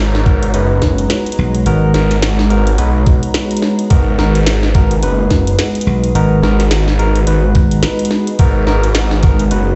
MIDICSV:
0, 0, Header, 1, 7, 480
1, 0, Start_track
1, 0, Key_signature, 5, "minor"
1, 0, Tempo, 560748
1, 1424, Time_signature, 4, 2, 24, 8
1, 8348, End_track
2, 0, Start_track
2, 0, Title_t, "Ambient pad"
2, 0, Program_c, 0, 92
2, 0, Note_on_c, 0, 68, 73
2, 0, Note_on_c, 0, 75, 68
2, 8348, Note_off_c, 0, 68, 0
2, 8348, Note_off_c, 0, 75, 0
2, 8348, End_track
3, 0, Start_track
3, 0, Title_t, "Analog synth pad"
3, 0, Program_c, 1, 89
3, 0, Note_on_c, 1, 56, 79
3, 0, Note_on_c, 1, 66, 74
3, 0, Note_on_c, 1, 73, 91
3, 0, Note_on_c, 1, 82, 70
3, 3311, Note_off_c, 1, 82, 0
3, 3333, Note_off_c, 1, 73, 0
3, 3344, Note_on_c, 1, 71, 87
3, 3347, Note_on_c, 1, 68, 74
3, 8348, Note_off_c, 1, 56, 0
3, 8348, Note_off_c, 1, 66, 0
3, 8348, Note_off_c, 1, 68, 0
3, 8348, Note_off_c, 1, 71, 0
3, 8348, End_track
4, 0, Start_track
4, 0, Title_t, "Tine electric piano"
4, 0, Program_c, 2, 4
4, 222, Note_on_c, 2, 63, 82
4, 222, Note_on_c, 2, 66, 83
4, 222, Note_on_c, 2, 70, 98
4, 223, Note_on_c, 2, 59, 88
4, 396, Note_off_c, 2, 70, 0
4, 397, Note_off_c, 2, 59, 0
4, 397, Note_off_c, 2, 63, 0
4, 397, Note_off_c, 2, 66, 0
4, 463, Note_on_c, 2, 63, 75
4, 463, Note_on_c, 2, 66, 77
4, 464, Note_on_c, 2, 59, 82
4, 464, Note_on_c, 2, 71, 91
4, 1400, Note_off_c, 2, 59, 0
4, 1400, Note_off_c, 2, 63, 0
4, 1400, Note_off_c, 2, 66, 0
4, 1400, Note_off_c, 2, 71, 0
4, 1424, Note_on_c, 2, 59, 92
4, 1424, Note_on_c, 2, 66, 82
4, 1424, Note_on_c, 2, 70, 101
4, 1425, Note_on_c, 2, 63, 83
4, 1640, Note_off_c, 2, 59, 0
4, 1640, Note_off_c, 2, 66, 0
4, 1640, Note_off_c, 2, 70, 0
4, 1641, Note_off_c, 2, 63, 0
4, 1664, Note_on_c, 2, 59, 77
4, 1664, Note_on_c, 2, 63, 71
4, 1665, Note_on_c, 2, 70, 88
4, 1666, Note_on_c, 2, 66, 72
4, 1838, Note_off_c, 2, 59, 0
4, 1838, Note_off_c, 2, 63, 0
4, 1838, Note_off_c, 2, 70, 0
4, 1839, Note_off_c, 2, 66, 0
4, 2141, Note_on_c, 2, 70, 95
4, 2143, Note_on_c, 2, 59, 89
4, 2143, Note_on_c, 2, 63, 79
4, 2143, Note_on_c, 2, 66, 80
4, 2317, Note_off_c, 2, 59, 0
4, 2317, Note_off_c, 2, 63, 0
4, 2317, Note_off_c, 2, 66, 0
4, 2317, Note_off_c, 2, 70, 0
4, 2382, Note_on_c, 2, 63, 76
4, 2382, Note_on_c, 2, 66, 74
4, 2382, Note_on_c, 2, 71, 91
4, 2383, Note_on_c, 2, 59, 81
4, 3319, Note_off_c, 2, 63, 0
4, 3319, Note_off_c, 2, 66, 0
4, 3319, Note_off_c, 2, 71, 0
4, 3320, Note_off_c, 2, 59, 0
4, 3340, Note_on_c, 2, 66, 82
4, 3341, Note_on_c, 2, 59, 92
4, 3341, Note_on_c, 2, 70, 99
4, 3342, Note_on_c, 2, 63, 82
4, 3558, Note_off_c, 2, 59, 0
4, 3558, Note_off_c, 2, 66, 0
4, 3559, Note_off_c, 2, 63, 0
4, 3559, Note_off_c, 2, 70, 0
4, 3584, Note_on_c, 2, 59, 78
4, 3584, Note_on_c, 2, 63, 71
4, 3584, Note_on_c, 2, 66, 72
4, 3585, Note_on_c, 2, 70, 86
4, 3758, Note_off_c, 2, 59, 0
4, 3758, Note_off_c, 2, 63, 0
4, 3758, Note_off_c, 2, 66, 0
4, 3758, Note_off_c, 2, 70, 0
4, 4065, Note_on_c, 2, 59, 90
4, 4065, Note_on_c, 2, 63, 81
4, 4065, Note_on_c, 2, 66, 80
4, 4066, Note_on_c, 2, 70, 95
4, 4238, Note_off_c, 2, 59, 0
4, 4238, Note_off_c, 2, 63, 0
4, 4238, Note_off_c, 2, 66, 0
4, 4239, Note_off_c, 2, 70, 0
4, 4305, Note_on_c, 2, 66, 77
4, 4306, Note_on_c, 2, 63, 75
4, 4307, Note_on_c, 2, 59, 84
4, 4307, Note_on_c, 2, 71, 92
4, 5241, Note_off_c, 2, 63, 0
4, 5241, Note_off_c, 2, 66, 0
4, 5241, Note_off_c, 2, 71, 0
4, 5242, Note_off_c, 2, 59, 0
4, 5265, Note_on_c, 2, 59, 92
4, 5265, Note_on_c, 2, 66, 83
4, 5266, Note_on_c, 2, 63, 84
4, 5266, Note_on_c, 2, 70, 98
4, 5481, Note_off_c, 2, 59, 0
4, 5481, Note_off_c, 2, 63, 0
4, 5481, Note_off_c, 2, 66, 0
4, 5481, Note_off_c, 2, 70, 0
4, 5508, Note_on_c, 2, 59, 80
4, 5508, Note_on_c, 2, 66, 70
4, 5509, Note_on_c, 2, 63, 73
4, 5509, Note_on_c, 2, 70, 87
4, 5680, Note_off_c, 2, 59, 0
4, 5680, Note_off_c, 2, 63, 0
4, 5680, Note_off_c, 2, 66, 0
4, 5680, Note_off_c, 2, 70, 0
4, 5984, Note_on_c, 2, 59, 86
4, 5984, Note_on_c, 2, 63, 80
4, 5985, Note_on_c, 2, 66, 82
4, 5985, Note_on_c, 2, 70, 96
4, 6158, Note_off_c, 2, 59, 0
4, 6158, Note_off_c, 2, 63, 0
4, 6158, Note_off_c, 2, 66, 0
4, 6158, Note_off_c, 2, 70, 0
4, 6226, Note_on_c, 2, 59, 84
4, 6226, Note_on_c, 2, 63, 79
4, 6226, Note_on_c, 2, 66, 74
4, 6226, Note_on_c, 2, 71, 93
4, 7161, Note_off_c, 2, 59, 0
4, 7161, Note_off_c, 2, 63, 0
4, 7161, Note_off_c, 2, 66, 0
4, 7161, Note_off_c, 2, 71, 0
4, 7183, Note_on_c, 2, 59, 93
4, 7183, Note_on_c, 2, 66, 86
4, 7184, Note_on_c, 2, 63, 82
4, 7184, Note_on_c, 2, 70, 102
4, 7400, Note_off_c, 2, 59, 0
4, 7400, Note_off_c, 2, 63, 0
4, 7400, Note_off_c, 2, 66, 0
4, 7400, Note_off_c, 2, 70, 0
4, 7421, Note_on_c, 2, 59, 81
4, 7421, Note_on_c, 2, 63, 75
4, 7421, Note_on_c, 2, 66, 75
4, 7422, Note_on_c, 2, 70, 87
4, 7596, Note_off_c, 2, 59, 0
4, 7596, Note_off_c, 2, 63, 0
4, 7596, Note_off_c, 2, 66, 0
4, 7597, Note_off_c, 2, 70, 0
4, 7901, Note_on_c, 2, 59, 91
4, 7901, Note_on_c, 2, 70, 101
4, 7902, Note_on_c, 2, 66, 80
4, 7903, Note_on_c, 2, 63, 83
4, 8076, Note_off_c, 2, 59, 0
4, 8076, Note_off_c, 2, 70, 0
4, 8077, Note_off_c, 2, 63, 0
4, 8077, Note_off_c, 2, 66, 0
4, 8142, Note_on_c, 2, 59, 84
4, 8142, Note_on_c, 2, 71, 92
4, 8143, Note_on_c, 2, 63, 79
4, 8143, Note_on_c, 2, 66, 78
4, 8348, Note_off_c, 2, 59, 0
4, 8348, Note_off_c, 2, 63, 0
4, 8348, Note_off_c, 2, 66, 0
4, 8348, Note_off_c, 2, 71, 0
4, 8348, End_track
5, 0, Start_track
5, 0, Title_t, "Detuned saw bass"
5, 0, Program_c, 3, 39
5, 0, Note_on_c, 3, 32, 94
5, 447, Note_off_c, 3, 32, 0
5, 460, Note_on_c, 3, 30, 92
5, 926, Note_off_c, 3, 30, 0
5, 1664, Note_on_c, 3, 32, 96
5, 2368, Note_off_c, 3, 32, 0
5, 2381, Note_on_c, 3, 35, 96
5, 2742, Note_off_c, 3, 35, 0
5, 3345, Note_on_c, 3, 32, 97
5, 3568, Note_off_c, 3, 32, 0
5, 3581, Note_on_c, 3, 32, 94
5, 4287, Note_off_c, 3, 32, 0
5, 4302, Note_on_c, 3, 30, 95
5, 4767, Note_off_c, 3, 30, 0
5, 5499, Note_on_c, 3, 32, 96
5, 6205, Note_off_c, 3, 32, 0
5, 6223, Note_on_c, 3, 32, 95
5, 6448, Note_off_c, 3, 32, 0
5, 7185, Note_on_c, 3, 32, 95
5, 7408, Note_off_c, 3, 32, 0
5, 7424, Note_on_c, 3, 32, 96
5, 8128, Note_off_c, 3, 32, 0
5, 8143, Note_on_c, 3, 30, 98
5, 8348, Note_off_c, 3, 30, 0
5, 8348, End_track
6, 0, Start_track
6, 0, Title_t, "Slap bass"
6, 0, Program_c, 4, 36
6, 1187, Note_on_c, 4, 35, 91
6, 1409, Note_off_c, 4, 35, 0
6, 1421, Note_on_c, 4, 32, 94
6, 1646, Note_off_c, 4, 32, 0
6, 5023, Note_on_c, 4, 35, 91
6, 5248, Note_off_c, 4, 35, 0
6, 5263, Note_on_c, 4, 32, 89
6, 5487, Note_off_c, 4, 32, 0
6, 6466, Note_on_c, 4, 32, 92
6, 6689, Note_off_c, 4, 32, 0
6, 8348, End_track
7, 0, Start_track
7, 0, Title_t, "Drums"
7, 127, Note_on_c, 9, 40, 53
7, 213, Note_off_c, 9, 40, 0
7, 224, Note_on_c, 9, 36, 97
7, 224, Note_on_c, 9, 42, 35
7, 309, Note_off_c, 9, 36, 0
7, 309, Note_off_c, 9, 42, 0
7, 365, Note_on_c, 9, 42, 50
7, 450, Note_off_c, 9, 42, 0
7, 460, Note_on_c, 9, 42, 62
7, 546, Note_off_c, 9, 42, 0
7, 700, Note_on_c, 9, 40, 52
7, 700, Note_on_c, 9, 42, 35
7, 704, Note_on_c, 9, 36, 55
7, 785, Note_off_c, 9, 40, 0
7, 785, Note_off_c, 9, 42, 0
7, 790, Note_off_c, 9, 36, 0
7, 842, Note_on_c, 9, 42, 49
7, 928, Note_off_c, 9, 42, 0
7, 941, Note_on_c, 9, 38, 111
7, 941, Note_on_c, 9, 42, 62
7, 1026, Note_off_c, 9, 38, 0
7, 1026, Note_off_c, 9, 42, 0
7, 1082, Note_on_c, 9, 42, 47
7, 1131, Note_off_c, 9, 42, 0
7, 1131, Note_on_c, 9, 42, 58
7, 1217, Note_off_c, 9, 42, 0
7, 1323, Note_on_c, 9, 42, 50
7, 1409, Note_off_c, 9, 42, 0
7, 1421, Note_on_c, 9, 42, 64
7, 1507, Note_off_c, 9, 42, 0
7, 1662, Note_on_c, 9, 40, 56
7, 1662, Note_on_c, 9, 42, 36
7, 1748, Note_off_c, 9, 40, 0
7, 1748, Note_off_c, 9, 42, 0
7, 1805, Note_on_c, 9, 38, 34
7, 1805, Note_on_c, 9, 42, 51
7, 1891, Note_off_c, 9, 38, 0
7, 1891, Note_off_c, 9, 42, 0
7, 1904, Note_on_c, 9, 38, 108
7, 1904, Note_on_c, 9, 42, 63
7, 1990, Note_off_c, 9, 38, 0
7, 1990, Note_off_c, 9, 42, 0
7, 2046, Note_on_c, 9, 40, 54
7, 2132, Note_off_c, 9, 40, 0
7, 2143, Note_on_c, 9, 42, 36
7, 2229, Note_off_c, 9, 42, 0
7, 2285, Note_on_c, 9, 42, 51
7, 2370, Note_off_c, 9, 42, 0
7, 2382, Note_on_c, 9, 42, 68
7, 2468, Note_off_c, 9, 42, 0
7, 2623, Note_on_c, 9, 42, 36
7, 2625, Note_on_c, 9, 36, 98
7, 2708, Note_off_c, 9, 42, 0
7, 2711, Note_off_c, 9, 36, 0
7, 2764, Note_on_c, 9, 42, 52
7, 2849, Note_off_c, 9, 42, 0
7, 2861, Note_on_c, 9, 38, 111
7, 2861, Note_on_c, 9, 42, 65
7, 2947, Note_off_c, 9, 38, 0
7, 2947, Note_off_c, 9, 42, 0
7, 3003, Note_on_c, 9, 42, 48
7, 3053, Note_off_c, 9, 42, 0
7, 3053, Note_on_c, 9, 42, 61
7, 3102, Note_on_c, 9, 40, 54
7, 3139, Note_off_c, 9, 42, 0
7, 3188, Note_off_c, 9, 40, 0
7, 3243, Note_on_c, 9, 42, 50
7, 3328, Note_off_c, 9, 42, 0
7, 3341, Note_on_c, 9, 42, 64
7, 3345, Note_on_c, 9, 36, 117
7, 3427, Note_off_c, 9, 42, 0
7, 3431, Note_off_c, 9, 36, 0
7, 3583, Note_on_c, 9, 40, 56
7, 3669, Note_off_c, 9, 40, 0
7, 3726, Note_on_c, 9, 42, 52
7, 3811, Note_off_c, 9, 42, 0
7, 3822, Note_on_c, 9, 38, 112
7, 3822, Note_on_c, 9, 42, 66
7, 3908, Note_off_c, 9, 38, 0
7, 3908, Note_off_c, 9, 42, 0
7, 3964, Note_on_c, 9, 40, 53
7, 4050, Note_off_c, 9, 40, 0
7, 4063, Note_on_c, 9, 42, 37
7, 4065, Note_on_c, 9, 36, 101
7, 4148, Note_off_c, 9, 42, 0
7, 4151, Note_off_c, 9, 36, 0
7, 4203, Note_on_c, 9, 42, 52
7, 4289, Note_off_c, 9, 42, 0
7, 4302, Note_on_c, 9, 42, 70
7, 4388, Note_off_c, 9, 42, 0
7, 4541, Note_on_c, 9, 40, 53
7, 4541, Note_on_c, 9, 42, 37
7, 4545, Note_on_c, 9, 36, 58
7, 4626, Note_off_c, 9, 40, 0
7, 4626, Note_off_c, 9, 42, 0
7, 4631, Note_off_c, 9, 36, 0
7, 4685, Note_on_c, 9, 42, 56
7, 4771, Note_off_c, 9, 42, 0
7, 4782, Note_on_c, 9, 38, 112
7, 4782, Note_on_c, 9, 42, 66
7, 4867, Note_off_c, 9, 38, 0
7, 4867, Note_off_c, 9, 42, 0
7, 4924, Note_on_c, 9, 42, 49
7, 4975, Note_off_c, 9, 42, 0
7, 4975, Note_on_c, 9, 42, 64
7, 5061, Note_off_c, 9, 42, 0
7, 5167, Note_on_c, 9, 42, 51
7, 5253, Note_off_c, 9, 42, 0
7, 5266, Note_on_c, 9, 42, 66
7, 5352, Note_off_c, 9, 42, 0
7, 5507, Note_on_c, 9, 40, 52
7, 5593, Note_off_c, 9, 40, 0
7, 5648, Note_on_c, 9, 38, 37
7, 5648, Note_on_c, 9, 42, 52
7, 5734, Note_off_c, 9, 38, 0
7, 5734, Note_off_c, 9, 42, 0
7, 5743, Note_on_c, 9, 38, 115
7, 5743, Note_on_c, 9, 42, 66
7, 5829, Note_off_c, 9, 38, 0
7, 5829, Note_off_c, 9, 42, 0
7, 5886, Note_on_c, 9, 40, 51
7, 5972, Note_off_c, 9, 40, 0
7, 5986, Note_on_c, 9, 42, 37
7, 6072, Note_off_c, 9, 42, 0
7, 6125, Note_on_c, 9, 42, 51
7, 6211, Note_off_c, 9, 42, 0
7, 6223, Note_on_c, 9, 42, 69
7, 6309, Note_off_c, 9, 42, 0
7, 6462, Note_on_c, 9, 42, 37
7, 6465, Note_on_c, 9, 36, 108
7, 6547, Note_off_c, 9, 42, 0
7, 6551, Note_off_c, 9, 36, 0
7, 6603, Note_on_c, 9, 42, 56
7, 6689, Note_off_c, 9, 42, 0
7, 6699, Note_on_c, 9, 38, 118
7, 6699, Note_on_c, 9, 42, 68
7, 6785, Note_off_c, 9, 38, 0
7, 6785, Note_off_c, 9, 42, 0
7, 6841, Note_on_c, 9, 42, 49
7, 6890, Note_off_c, 9, 42, 0
7, 6890, Note_on_c, 9, 42, 64
7, 6940, Note_on_c, 9, 40, 54
7, 6976, Note_off_c, 9, 42, 0
7, 7025, Note_off_c, 9, 40, 0
7, 7082, Note_on_c, 9, 42, 52
7, 7168, Note_off_c, 9, 42, 0
7, 7181, Note_on_c, 9, 42, 66
7, 7185, Note_on_c, 9, 36, 126
7, 7267, Note_off_c, 9, 42, 0
7, 7270, Note_off_c, 9, 36, 0
7, 7420, Note_on_c, 9, 40, 51
7, 7505, Note_off_c, 9, 40, 0
7, 7562, Note_on_c, 9, 42, 51
7, 7648, Note_off_c, 9, 42, 0
7, 7659, Note_on_c, 9, 38, 117
7, 7659, Note_on_c, 9, 42, 65
7, 7744, Note_off_c, 9, 38, 0
7, 7744, Note_off_c, 9, 42, 0
7, 7800, Note_on_c, 9, 40, 50
7, 7886, Note_off_c, 9, 40, 0
7, 7898, Note_on_c, 9, 42, 38
7, 7904, Note_on_c, 9, 36, 107
7, 7984, Note_off_c, 9, 42, 0
7, 7990, Note_off_c, 9, 36, 0
7, 8042, Note_on_c, 9, 42, 51
7, 8127, Note_off_c, 9, 42, 0
7, 8140, Note_on_c, 9, 42, 68
7, 8226, Note_off_c, 9, 42, 0
7, 8348, End_track
0, 0, End_of_file